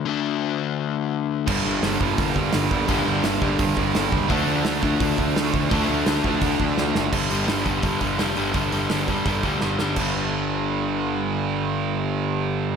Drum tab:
CC |--------|x-------|--------|--------|
HH |--------|--o-o-o-|o-o-o-o-|o-o-o-o-|
SD |--------|--o---o-|--o---o-|--o---o-|
BD |--------|o--ooo-o|o--ooo-o|o--ooo-o|

CC |--------|x-------|--------|x-------|
HH |o-o-o---|-ooooooo|oooooo--|--------|
SD |--o---oo|--o---o-|--o---oo|--------|
BD |o--ooo--|o--ooo--|o--ooo--|o-------|

CC |--------|
HH |--------|
SD |--------|
BD |--------|